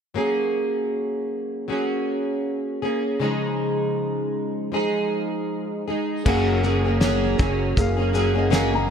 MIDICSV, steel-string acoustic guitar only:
0, 0, Header, 1, 2, 480
1, 0, Start_track
1, 0, Key_signature, 6, "major"
1, 0, Tempo, 759494
1, 109, Time_signature, 4, 2, 24, 8
1, 5625, End_track
2, 0, Start_track
2, 0, Title_t, "Steel-string acoustic guitar"
2, 0, Program_c, 0, 25
2, 91, Note_on_c, 0, 54, 55
2, 98, Note_on_c, 0, 58, 67
2, 103, Note_on_c, 0, 61, 66
2, 110, Note_on_c, 0, 68, 63
2, 1053, Note_off_c, 0, 54, 0
2, 1058, Note_off_c, 0, 58, 0
2, 1061, Note_on_c, 0, 54, 48
2, 1065, Note_on_c, 0, 58, 53
2, 1068, Note_off_c, 0, 61, 0
2, 1069, Note_off_c, 0, 68, 0
2, 1071, Note_on_c, 0, 61, 53
2, 1072, Note_on_c, 0, 68, 57
2, 1781, Note_off_c, 0, 68, 0
2, 1784, Note_on_c, 0, 68, 49
2, 1786, Note_off_c, 0, 61, 0
2, 1788, Note_off_c, 0, 54, 0
2, 1789, Note_on_c, 0, 61, 43
2, 1791, Note_off_c, 0, 58, 0
2, 1799, Note_on_c, 0, 58, 35
2, 2020, Note_on_c, 0, 49, 64
2, 2024, Note_on_c, 0, 53, 68
2, 2027, Note_off_c, 0, 58, 0
2, 2029, Note_off_c, 0, 68, 0
2, 2029, Note_on_c, 0, 56, 75
2, 2030, Note_off_c, 0, 61, 0
2, 2032, Note_on_c, 0, 63, 76
2, 2039, Note_on_c, 0, 68, 67
2, 2974, Note_off_c, 0, 53, 0
2, 2982, Note_on_c, 0, 53, 54
2, 2985, Note_off_c, 0, 63, 0
2, 2987, Note_off_c, 0, 56, 0
2, 2988, Note_off_c, 0, 49, 0
2, 2989, Note_on_c, 0, 56, 55
2, 2992, Note_on_c, 0, 63, 58
2, 2993, Note_off_c, 0, 68, 0
2, 2996, Note_on_c, 0, 68, 61
2, 3709, Note_off_c, 0, 53, 0
2, 3711, Note_off_c, 0, 68, 0
2, 3714, Note_off_c, 0, 63, 0
2, 3714, Note_on_c, 0, 68, 46
2, 3720, Note_on_c, 0, 63, 45
2, 3726, Note_off_c, 0, 56, 0
2, 3728, Note_on_c, 0, 56, 39
2, 3951, Note_off_c, 0, 68, 0
2, 3952, Note_on_c, 0, 54, 68
2, 3953, Note_off_c, 0, 56, 0
2, 3954, Note_off_c, 0, 63, 0
2, 3955, Note_on_c, 0, 58, 80
2, 3956, Note_on_c, 0, 61, 88
2, 3959, Note_on_c, 0, 68, 77
2, 4183, Note_off_c, 0, 54, 0
2, 4184, Note_off_c, 0, 58, 0
2, 4190, Note_off_c, 0, 61, 0
2, 4191, Note_on_c, 0, 54, 61
2, 4191, Note_on_c, 0, 58, 54
2, 4192, Note_off_c, 0, 68, 0
2, 4197, Note_on_c, 0, 61, 56
2, 4200, Note_on_c, 0, 68, 64
2, 4317, Note_off_c, 0, 68, 0
2, 4323, Note_off_c, 0, 61, 0
2, 4324, Note_on_c, 0, 68, 51
2, 4325, Note_off_c, 0, 54, 0
2, 4325, Note_off_c, 0, 58, 0
2, 4330, Note_on_c, 0, 61, 49
2, 4338, Note_on_c, 0, 58, 44
2, 4420, Note_off_c, 0, 58, 0
2, 4421, Note_off_c, 0, 61, 0
2, 4426, Note_off_c, 0, 68, 0
2, 4427, Note_on_c, 0, 54, 81
2, 4428, Note_on_c, 0, 58, 75
2, 4429, Note_on_c, 0, 61, 87
2, 4434, Note_on_c, 0, 68, 84
2, 4656, Note_off_c, 0, 54, 0
2, 4663, Note_off_c, 0, 58, 0
2, 4664, Note_on_c, 0, 54, 57
2, 4666, Note_off_c, 0, 61, 0
2, 4667, Note_off_c, 0, 68, 0
2, 4670, Note_on_c, 0, 58, 60
2, 4673, Note_on_c, 0, 61, 65
2, 4675, Note_on_c, 0, 68, 61
2, 5028, Note_off_c, 0, 68, 0
2, 5035, Note_off_c, 0, 61, 0
2, 5036, Note_on_c, 0, 68, 56
2, 5040, Note_off_c, 0, 54, 0
2, 5040, Note_off_c, 0, 58, 0
2, 5043, Note_on_c, 0, 61, 48
2, 5048, Note_on_c, 0, 58, 44
2, 5137, Note_off_c, 0, 58, 0
2, 5139, Note_on_c, 0, 54, 66
2, 5142, Note_off_c, 0, 61, 0
2, 5143, Note_off_c, 0, 68, 0
2, 5145, Note_on_c, 0, 58, 68
2, 5150, Note_on_c, 0, 61, 67
2, 5150, Note_on_c, 0, 68, 74
2, 5262, Note_off_c, 0, 68, 0
2, 5268, Note_off_c, 0, 61, 0
2, 5269, Note_on_c, 0, 68, 51
2, 5273, Note_off_c, 0, 58, 0
2, 5275, Note_on_c, 0, 61, 46
2, 5277, Note_off_c, 0, 54, 0
2, 5281, Note_on_c, 0, 58, 46
2, 5371, Note_off_c, 0, 58, 0
2, 5374, Note_on_c, 0, 54, 87
2, 5376, Note_off_c, 0, 61, 0
2, 5377, Note_off_c, 0, 68, 0
2, 5379, Note_on_c, 0, 58, 87
2, 5384, Note_on_c, 0, 61, 99
2, 5385, Note_on_c, 0, 68, 92
2, 5503, Note_off_c, 0, 68, 0
2, 5508, Note_off_c, 0, 61, 0
2, 5511, Note_on_c, 0, 68, 55
2, 5514, Note_off_c, 0, 58, 0
2, 5515, Note_off_c, 0, 54, 0
2, 5516, Note_on_c, 0, 61, 42
2, 5521, Note_on_c, 0, 58, 42
2, 5610, Note_off_c, 0, 58, 0
2, 5616, Note_off_c, 0, 61, 0
2, 5622, Note_off_c, 0, 68, 0
2, 5625, End_track
0, 0, End_of_file